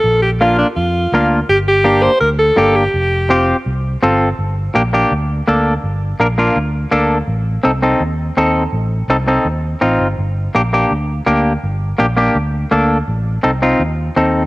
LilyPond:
<<
  \new Staff \with { instrumentName = "Alto saxophone" } { \time 4/4 \key g \minor \tempo 4 = 166 a'8 g'8 f'8 d'8 f'4. r8 | g'8 g'4 c''8 bes'8 a'4 g'8~ | g'4. r2 r8 | r1 |
r1 | r1 | r1 | r1 |
r1 | r1 | }
  \new Staff \with { instrumentName = "Clean electric guitar" } { \time 4/4 \key g \minor r4 <bes d' f'>8 r4. <bes d' f'>8 r8 | r4 <bes d' g'>8 r4. <bes d' g'>8 r8 | r4 <c' f' g'>8 r4. <c' f' a'>8 r8 | r4 <bes d' g'>8 <bes d' g'>8 r4 <bes d' a'>8 r8 |
r4 <bes d' bes'>8 <bes d' f'>8 r4 <bes d' a'>8 r8 | r4 <c' ees' a'>8 <c' ees' a'>8 r4 <c' ees' a'>8 r8 | r4 <c' ees' a'>8 <c' ees' a'>8 r4 <c' ees' f'>8 r8 | r4 <bes d' g'>8 <bes d' g'>8 r4 <bes d' g'>8 r8 |
r4 <bes d' g'>8 <bes d' g'>8 r4 <bes d' a'>8 r8 | r4 <c' ees' a'>8 <c' ees' f'>8 r4 <c' ees' a'>8 r8 | }
  \new Staff \with { instrumentName = "Fingered electric bass" } { \clef bass \time 4/4 \key g \minor bes,,2 f,4 d,4 | g,,2 d,4 g,,4 | f,,2 c,4 g,,4 | g,,4 bes,,4 d,4 d,4 |
g,,4 bes,,4 d,4 d,4 | a,,4 c,4 ees,4 ees,4 | a,,4 c,4 ees,4 a,,8 g,,8 | g,,4 bes,,4 d,4 d,4 |
g,,4 bes,,4 d,4 d,4 | a,,4 c,4 ees,4 ees,4 | }
>>